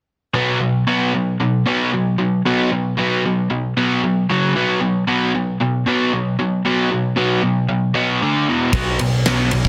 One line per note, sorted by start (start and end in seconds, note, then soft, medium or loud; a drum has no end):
0.34 0.58 B2 medium
0.34 0.59 F#3 medium
0.34 0.59 B3 medium
0.61 0.84 B2 medium
0.61 0.84 F#3 medium
0.87 1.11 B2 medium
0.87 1.11 F#3 medium
0.87 1.12 B3 medium
1.14 1.37 B2 medium
1.14 1.37 F#3 medium
1.40 1.63 B2 medium
1.40 1.63 F#3 medium
1.66 1.90 B2 medium
1.66 1.90 F#3 loud
1.66 1.90 B3 loud
1.94 2.16 B2 medium
1.94 2.16 F#3 medium
2.19 2.41 B2 medium
2.19 2.41 F#3 medium
2.45 2.69 B2 medium
2.45 2.69 F#3 loud
2.45 2.69 B3 loud
2.72 2.94 B2 medium
2.72 2.94 F#3 medium
2.97 3.21 B2 medium
2.97 3.22 F#3 medium
2.97 3.22 B3 loud
3.25 3.47 B2 medium
3.25 3.47 F#3 medium
3.50 3.73 B2 medium
3.50 3.73 F#3 medium
3.77 4.00 B2 medium
3.77 4.01 F#3 medium
3.77 4.00 B3 medium
4.04 4.26 B2 medium
4.04 4.26 F#3 medium
4.30 4.53 F#2 medium
4.30 4.53 C#3 loud
4.30 4.54 F#3 medium
4.55 4.79 B2 medium
4.55 4.79 F#3 medium
4.55 4.79 B3 loud
4.81 5.04 B2 medium
4.81 5.04 F#3 medium
5.07 5.31 B2 medium
5.07 5.31 F#3 medium
5.07 5.32 B3 medium
5.34 5.57 B2 medium
5.34 5.57 F#3 medium
5.60 5.83 B2 medium
5.60 5.83 F#3 medium
5.86 6.10 B2 medium
5.86 6.11 F#3 medium
5.86 6.11 B3 loud
6.13 6.36 B2 medium
6.13 6.36 F#3 medium
6.39 6.62 B2 medium
6.39 6.62 F#3 medium
6.65 6.89 B2 loud
6.65 6.89 F#3 medium
6.65 6.90 B3 loud
6.91 7.14 B2 medium
6.91 7.14 F#3 medium
7.16 7.41 B2 medium
7.16 7.41 F#3 medium
7.16 7.41 B3 medium
7.43 7.66 B2 medium
7.43 7.66 F#3 medium
7.69 7.92 B2 medium
7.69 7.92 F#3 medium
7.94 8.19 B2 medium
7.94 8.19 F#3 medium
7.94 8.20 B3 loud
8.22 8.46 D3 medium
8.22 8.47 A3 medium
8.22 8.47 D4 medium
8.49 8.73 E2 medium
8.49 8.72 B2 medium
8.49 8.73 E3 medium
8.73 8.96 B1 medium
8.73 8.98 B2 medium
8.73 8.99 F#3 loud
8.73 8.98 B3 medium
8.73 kick loud
8.73 ride medium
8.99 9.24 B1 medium
8.99 9.24 B2 medium
8.99 9.24 F#3 medium
8.99 ride medium
9.26 9.50 B1 medium
9.26 9.50 B2 medium
9.26 9.51 F#3 medium
9.26 9.51 B3 medium
9.26 snare medium
9.26 ride medium
9.51 9.69 B1 medium
9.51 9.69 B2 medium
9.51 9.69 F#3 medium
9.51 ride medium
9.65 kick medium